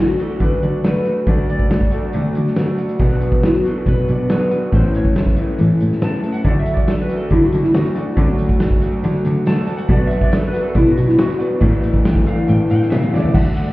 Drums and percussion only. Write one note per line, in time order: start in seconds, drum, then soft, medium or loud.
0.19 closed hi-hat medium
0.40 kick medium
0.40 closed hi-hat medium
0.62 closed hi-hat medium
0.84 snare loud
0.84 closed hi-hat medium
1.05 closed hi-hat medium
1.27 kick loud
1.27 closed hi-hat medium
1.49 closed hi-hat medium
1.59 kick medium
1.70 snare loud
1.70 closed hi-hat medium
1.81 kick medium
1.91 closed hi-hat medium
2.13 closed hi-hat medium
2.35 closed hi-hat medium
2.47 snare soft
2.56 snare loud
2.56 closed hi-hat medium
2.78 closed hi-hat medium
2.89 closed hi-hat medium
3.00 kick loud
3.00 closed hi-hat medium
3.21 closed hi-hat medium
3.32 kick medium
3.43 snare loud
3.43 closed hi-hat medium
3.65 closed hi-hat medium
3.86 kick medium
3.86 closed hi-hat medium
4.08 closed hi-hat medium
4.29 snare loud
4.29 closed hi-hat medium
4.51 closed hi-hat medium
4.72 kick medium
4.72 closed hi-hat medium
4.94 closed hi-hat medium
5.05 kick medium
5.15 snare loud
5.15 closed hi-hat medium
5.26 kick medium
5.36 closed hi-hat medium
5.58 closed hi-hat medium
5.80 closed hi-hat medium
5.92 snare soft
6.01 snare loud
6.01 closed hi-hat medium
6.23 closed hi-hat medium
6.34 closed hi-hat medium
6.45 kick medium
6.45 closed hi-hat medium
6.66 closed hi-hat medium
6.66 tambourine medium
6.77 kick medium
6.77 tambourine soft
6.87 snare loud
6.87 closed hi-hat medium
6.87 tambourine medium
7.00 tambourine soft
7.09 closed hi-hat medium
7.09 tambourine medium
7.30 kick medium
7.30 closed hi-hat medium
7.43 tambourine soft
7.52 closed hi-hat medium
7.52 tambourine medium
7.64 snare soft
7.74 snare loud
7.74 closed hi-hat medium
7.74 tambourine medium
7.85 tambourine medium
7.95 closed hi-hat medium
8.17 kick loud
8.17 closed hi-hat medium
8.38 closed hi-hat medium
8.38 tambourine medium
8.49 kick medium
8.49 tambourine soft
8.60 snare loud
8.60 closed hi-hat medium
8.60 tambourine medium
8.71 kick medium
8.71 tambourine soft
8.81 closed hi-hat medium
8.81 tambourine medium
9.04 closed hi-hat medium
9.13 tambourine soft
9.24 closed hi-hat medium
9.24 tambourine medium
9.46 snare loud
9.46 closed hi-hat medium
9.46 tambourine medium
9.57 tambourine medium
9.67 closed hi-hat medium
9.78 closed hi-hat medium
9.89 kick loud
9.89 closed hi-hat medium
10.11 closed hi-hat medium
10.11 tambourine medium
10.21 kick medium
10.21 tambourine soft
10.32 snare loud
10.32 closed hi-hat medium
10.32 tambourine medium
10.44 tambourine soft
10.54 closed hi-hat medium
10.54 tambourine medium
10.75 kick medium
10.75 closed hi-hat medium
10.87 tambourine soft
10.97 closed hi-hat medium
10.97 tambourine medium
11.09 snare soft
11.18 snare loud
11.18 closed hi-hat medium
11.18 tambourine medium
11.29 tambourine medium
11.40 closed hi-hat medium
11.61 kick loud
11.61 closed hi-hat medium
11.61 tambourine soft
11.72 tambourine soft
11.83 closed hi-hat medium
11.83 tambourine medium
11.94 kick medium
11.94 tambourine soft
12.05 snare loud
12.05 closed hi-hat medium
12.05 tambourine medium
12.15 kick medium
12.26 closed hi-hat medium
12.26 tambourine medium
12.48 closed hi-hat medium
12.48 tambourine soft
12.70 closed hi-hat medium
12.70 tambourine medium
12.82 snare soft
12.91 snare loud
12.91 closed hi-hat medium
12.91 tambourine loud
13.02 tambourine medium
13.13 snare medium
13.13 tambourine soft
13.24 floor tom medium
13.35 kick loud
13.35 crash loud
13.55 ride medium
13.55 tambourine medium